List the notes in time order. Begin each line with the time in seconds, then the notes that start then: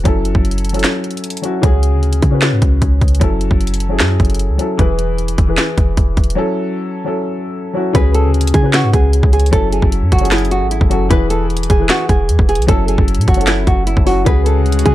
0.04 F#1 F#3 C#4 E4 A4, kick, closed hi-hat
0.25 closed hi-hat
0.35 F#1, kick
0.45 closed hi-hat
0.51 closed hi-hat
0.58 closed hi-hat
0.65 closed hi-hat
0.69 F#3, closed hi-hat
0.74 C#4 E4 A4, closed hi-hat
0.79 closed hi-hat
0.84 snare, clap, closed hi-hat
1.04 closed hi-hat
1.11 closed hi-hat
1.17 closed hi-hat
1.24 closed hi-hat
1.30 closed hi-hat
1.37 closed hi-hat
1.42 F#3 C#4 E4 F#4, closed hi-hat
1.62 C#2 C#3 C#4 F#4 G#4, kick, closed hi-hat
1.83 closed hi-hat
1.93 D2
2.03 closed hi-hat
2.13 closed hi-hat
2.22 C#3, kick, closed hi-hat
2.31 C#3 C#4 F#4 B4
2.42 snare, clap, closed hi-hat
2.52 G#2
2.62 C#2, kick, closed hi-hat
2.82 C#2, kick, closed hi-hat
3.01 C#2, kick, closed hi-hat
3.08 closed hi-hat
3.15 closed hi-hat
3.20 F#1 F#3 C#4 E4 A4, kick, closed hi-hat
3.41 closed hi-hat
3.51 F#1, kick
3.61 closed hi-hat
3.67 closed hi-hat
3.74 closed hi-hat
3.80 closed hi-hat
3.89 F#3 C#4 E4 G#4
4.00 F#2, snare, clap, closed hi-hat
4.20 F#1, kick, closed hi-hat
4.25 closed hi-hat
4.30 closed hi-hat
4.35 closed hi-hat
4.39 closed hi-hat
4.49 C#2
4.58 F#3 C#4 E4 A4, closed hi-hat
4.77 E1 E3 E4 G#4 B4, kick, closed hi-hat
4.99 closed hi-hat
5.18 closed hi-hat
5.28 closed hi-hat
5.38 E1, kick, closed hi-hat
5.46 E3 E4 G#4 B4
5.57 snare, clap, closed hi-hat
5.78 E1, kick, closed hi-hat
5.97 E1, kick, closed hi-hat
6.17 E1, kick, closed hi-hat
6.24 closed hi-hat
6.30 closed hi-hat
6.35 F#3 C#4 E4 A4
7.04 F#3 C#4 E4 A4
7.73 F#3 C#4 E4 F#4
7.93 C#2 C#3 C#4 F#4 G#4 B4, kick, closed hi-hat
8.14 A4, closed hi-hat
8.24 D2
8.34 closed hi-hat
8.41 closed hi-hat
8.47 closed hi-hat
8.54 C#3 G#4, kick, closed hi-hat
8.62 C#3 C#4 F#4 B4
8.73 F#4, snare, clap, closed hi-hat
8.84 G#2
8.93 C#2 G#4, kick, closed hi-hat
9.13 closed hi-hat
9.23 C#2, kick
9.33 G#4, closed hi-hat
9.40 closed hi-hat
9.46 closed hi-hat
9.51 F#1 F#3 C#4 E4 A4, kick, closed hi-hat
9.72 G#4, closed hi-hat
9.82 F#1, kick
9.92 closed hi-hat
10.02 F#2
10.12 F#1 F#4, kick, closed hi-hat
10.19 F#3 C#4 E4, closed hi-hat
10.23 G#4, closed hi-hat
10.31 E4, snare, clap, closed hi-hat
10.38 closed hi-hat
10.45 closed hi-hat
10.51 F#4, closed hi-hat
10.61 G#1
10.71 E4, closed hi-hat
10.81 F#1, kick
10.89 F#3 C#4 E4 F#4 A4, closed hi-hat
11.09 E1 E3 E4 G#4 B4, kick, closed hi-hat
11.30 A4, closed hi-hat
11.50 closed hi-hat
11.57 closed hi-hat
11.63 closed hi-hat
11.70 E1 G#4, kick, closed hi-hat
11.78 E3 E4 G#4 B4
11.89 F#4, snare, clap, closed hi-hat
12.09 E1 G#4, kick, closed hi-hat
12.29 E2, closed hi-hat
12.39 E1, kick
12.49 G#4, closed hi-hat
12.55 B1, closed hi-hat
12.62 closed hi-hat
12.67 F#1 F#3 C#4 E4 A4, kick, closed hi-hat
12.88 G#4, closed hi-hat
12.98 F#1, kick
13.08 closed hi-hat
13.15 A2, closed hi-hat
13.21 closed hi-hat
13.28 F#1 F#4, kick, closed hi-hat
13.34 F#3 C#4 E4, closed hi-hat
13.39 A4, closed hi-hat
13.47 E4, snare, clap, closed hi-hat
13.67 F#1 F#4, kick, closed hi-hat
13.87 E4, closed hi-hat
13.97 F#1, kick
14.05 F#3 C#4 E4 F#4, open hi-hat
14.25 C#2 C#3 G#3 C#4 F#4 G#4 B4, kick, closed hi-hat
14.46 A4, closed hi-hat
14.56 D2
14.66 closed hi-hat
14.72 closed hi-hat
14.79 closed hi-hat
14.86 C#3 G#4, kick, closed hi-hat